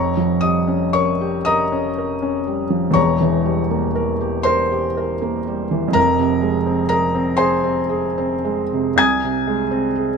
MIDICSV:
0, 0, Header, 1, 2, 480
1, 0, Start_track
1, 0, Key_signature, -4, "minor"
1, 0, Tempo, 1041667
1, 911, Tempo, 996678
1, 1383, Time_signature, 6, 3, 24, 8
1, 2831, Tempo, 969305
1, 3791, Tempo, 1079137
1, 4271, Tempo, 967742
1, 4862, End_track
2, 0, Start_track
2, 0, Title_t, "Felt piano"
2, 0, Program_c, 0, 0
2, 0, Note_on_c, 0, 29, 57
2, 0, Note_on_c, 0, 41, 66
2, 0, Note_on_c, 0, 73, 62
2, 0, Note_on_c, 0, 82, 69
2, 0, Note_on_c, 0, 85, 84
2, 51, Control_c, 0, 64, 127
2, 80, Note_on_c, 0, 53, 47
2, 177, Note_off_c, 0, 82, 0
2, 178, Note_off_c, 0, 73, 0
2, 188, Note_on_c, 0, 87, 87
2, 193, Note_off_c, 0, 85, 0
2, 193, Note_on_c, 0, 75, 69
2, 195, Note_on_c, 0, 55, 48
2, 273, Note_off_c, 0, 53, 0
2, 312, Note_on_c, 0, 61, 52
2, 391, Note_off_c, 0, 55, 0
2, 421, Note_off_c, 0, 75, 0
2, 430, Note_on_c, 0, 85, 90
2, 432, Note_on_c, 0, 73, 66
2, 435, Note_on_c, 0, 70, 51
2, 436, Note_off_c, 0, 87, 0
2, 509, Note_off_c, 0, 61, 0
2, 558, Note_on_c, 0, 67, 55
2, 629, Note_off_c, 0, 70, 0
2, 657, Note_off_c, 0, 73, 0
2, 667, Note_on_c, 0, 87, 102
2, 673, Note_off_c, 0, 85, 0
2, 673, Note_on_c, 0, 75, 76
2, 674, Note_on_c, 0, 82, 82
2, 679, Note_on_c, 0, 70, 54
2, 748, Note_off_c, 0, 67, 0
2, 793, Note_on_c, 0, 61, 58
2, 865, Note_off_c, 0, 70, 0
2, 914, Note_on_c, 0, 70, 46
2, 982, Note_off_c, 0, 61, 0
2, 1029, Note_on_c, 0, 61, 55
2, 1103, Note_off_c, 0, 70, 0
2, 1148, Note_on_c, 0, 55, 51
2, 1218, Note_off_c, 0, 61, 0
2, 1261, Note_on_c, 0, 53, 48
2, 1336, Note_off_c, 0, 55, 0
2, 1359, Note_on_c, 0, 40, 67
2, 1361, Note_off_c, 0, 75, 0
2, 1362, Note_off_c, 0, 82, 0
2, 1365, Note_off_c, 0, 29, 0
2, 1367, Note_off_c, 0, 41, 0
2, 1372, Note_on_c, 0, 85, 93
2, 1376, Note_on_c, 0, 28, 63
2, 1377, Note_on_c, 0, 73, 69
2, 1377, Note_on_c, 0, 82, 70
2, 1378, Note_off_c, 0, 87, 0
2, 1381, Note_off_c, 0, 53, 0
2, 1391, Control_c, 0, 64, 0
2, 1470, Control_c, 0, 64, 127
2, 1503, Note_on_c, 0, 52, 50
2, 1622, Note_on_c, 0, 55, 52
2, 1696, Note_off_c, 0, 52, 0
2, 1742, Note_on_c, 0, 58, 53
2, 1816, Note_off_c, 0, 55, 0
2, 1863, Note_on_c, 0, 70, 55
2, 1937, Note_off_c, 0, 58, 0
2, 1984, Note_on_c, 0, 67, 57
2, 2059, Note_off_c, 0, 70, 0
2, 2086, Note_off_c, 0, 73, 0
2, 2086, Note_off_c, 0, 82, 0
2, 2094, Note_on_c, 0, 84, 109
2, 2100, Note_on_c, 0, 72, 81
2, 2103, Note_off_c, 0, 85, 0
2, 2104, Note_on_c, 0, 70, 70
2, 2181, Note_off_c, 0, 67, 0
2, 2231, Note_on_c, 0, 67, 58
2, 2302, Note_off_c, 0, 70, 0
2, 2354, Note_on_c, 0, 70, 56
2, 2426, Note_off_c, 0, 67, 0
2, 2472, Note_on_c, 0, 58, 60
2, 2548, Note_off_c, 0, 70, 0
2, 2594, Note_on_c, 0, 55, 57
2, 2665, Note_off_c, 0, 58, 0
2, 2709, Note_on_c, 0, 52, 57
2, 2784, Note_off_c, 0, 55, 0
2, 2792, Note_on_c, 0, 41, 70
2, 2799, Note_off_c, 0, 40, 0
2, 2807, Note_off_c, 0, 72, 0
2, 2808, Note_off_c, 0, 28, 0
2, 2816, Note_on_c, 0, 82, 108
2, 2821, Note_on_c, 0, 29, 66
2, 2823, Note_off_c, 0, 84, 0
2, 2823, Note_on_c, 0, 70, 83
2, 2828, Note_off_c, 0, 52, 0
2, 2840, Control_c, 0, 64, 0
2, 2927, Control_c, 0, 64, 127
2, 2941, Note_on_c, 0, 48, 56
2, 3055, Note_on_c, 0, 56, 59
2, 3133, Note_off_c, 0, 48, 0
2, 3178, Note_on_c, 0, 60, 59
2, 3249, Note_off_c, 0, 56, 0
2, 3279, Note_off_c, 0, 70, 0
2, 3281, Note_off_c, 0, 82, 0
2, 3289, Note_on_c, 0, 82, 102
2, 3295, Note_on_c, 0, 70, 70
2, 3298, Note_on_c, 0, 68, 62
2, 3370, Note_off_c, 0, 60, 0
2, 3418, Note_on_c, 0, 60, 65
2, 3491, Note_off_c, 0, 68, 0
2, 3520, Note_off_c, 0, 70, 0
2, 3526, Note_on_c, 0, 84, 102
2, 3530, Note_on_c, 0, 80, 79
2, 3531, Note_on_c, 0, 72, 75
2, 3534, Note_off_c, 0, 82, 0
2, 3536, Note_on_c, 0, 68, 66
2, 3612, Note_off_c, 0, 60, 0
2, 3660, Note_on_c, 0, 60, 63
2, 3736, Note_off_c, 0, 68, 0
2, 3786, Note_on_c, 0, 68, 57
2, 3860, Note_off_c, 0, 60, 0
2, 3913, Note_on_c, 0, 60, 62
2, 3981, Note_off_c, 0, 68, 0
2, 4033, Note_on_c, 0, 56, 58
2, 4108, Note_off_c, 0, 60, 0
2, 4160, Note_on_c, 0, 48, 55
2, 4226, Note_off_c, 0, 56, 0
2, 4235, Note_off_c, 0, 41, 0
2, 4249, Note_off_c, 0, 29, 0
2, 4249, Note_off_c, 0, 72, 0
2, 4249, Note_off_c, 0, 80, 0
2, 4261, Note_on_c, 0, 36, 71
2, 4265, Note_off_c, 0, 84, 0
2, 4269, Note_on_c, 0, 92, 123
2, 4273, Note_on_c, 0, 87, 93
2, 4274, Note_off_c, 0, 48, 0
2, 4274, Note_on_c, 0, 80, 91
2, 4279, Control_c, 0, 64, 0
2, 4368, Control_c, 0, 64, 127
2, 4397, Note_on_c, 0, 48, 59
2, 4515, Note_on_c, 0, 56, 58
2, 4587, Note_off_c, 0, 48, 0
2, 4633, Note_on_c, 0, 60, 63
2, 4705, Note_off_c, 0, 56, 0
2, 4753, Note_on_c, 0, 68, 57
2, 4823, Note_off_c, 0, 60, 0
2, 4862, Note_off_c, 0, 36, 0
2, 4862, Note_off_c, 0, 68, 0
2, 4862, Note_off_c, 0, 80, 0
2, 4862, Note_off_c, 0, 87, 0
2, 4862, Note_off_c, 0, 92, 0
2, 4862, End_track
0, 0, End_of_file